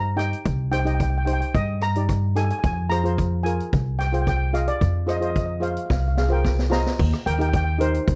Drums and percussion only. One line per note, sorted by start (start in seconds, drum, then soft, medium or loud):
0.19 cross-stick medium
0.19 closed hi-hat medium
0.33 closed hi-hat soft
0.45 kick loud
0.45 closed hi-hat medium
0.72 cross-stick medium
0.72 closed hi-hat medium
0.87 closed hi-hat medium
1.00 kick medium
1.00 closed hi-hat medium
1.27 closed hi-hat medium
1.41 closed hi-hat medium
1.54 kick loud
1.54 closed hi-hat medium
1.81 cross-stick medium
1.81 closed hi-hat medium
1.95 closed hi-hat medium
2.09 kick medium
2.09 cross-stick medium
2.09 closed hi-hat medium
2.36 cross-stick medium
2.36 closed hi-hat medium
2.50 closed hi-hat medium
2.64 kick medium
2.64 closed hi-hat medium
2.91 cross-stick medium
2.91 closed hi-hat medium
3.05 closed hi-hat medium
3.18 kick medium
3.18 closed hi-hat medium
3.46 closed hi-hat medium
3.60 closed hi-hat medium
3.73 kick loud
3.73 closed hi-hat medium
4.00 cross-stick medium
4.00 closed hi-hat medium
4.14 closed hi-hat medium
4.27 kick medium
4.27 cross-stick medium
4.27 closed hi-hat soft
4.55 cross-stick medium
4.55 closed hi-hat medium
4.67 closed hi-hat medium
4.81 kick medium
4.81 closed hi-hat medium
5.09 cross-stick medium
5.09 closed hi-hat medium
5.22 closed hi-hat medium
5.36 kick medium
5.36 closed hi-hat medium
5.63 closed hi-hat medium
5.77 closed hi-hat medium
5.90 kick loud
5.90 snare medium
6.17 snare medium
6.45 kick medium
6.45 snare medium
6.59 snare medium
6.72 snare medium
6.86 snare medium
6.99 kick loud
6.99 crash loud
7.13 cross-stick medium
7.27 closed hi-hat medium
7.41 closed hi-hat medium
7.53 kick medium
7.53 closed hi-hat medium
7.81 closed hi-hat medium
7.94 closed hi-hat medium
8.08 kick loud
8.08 closed hi-hat medium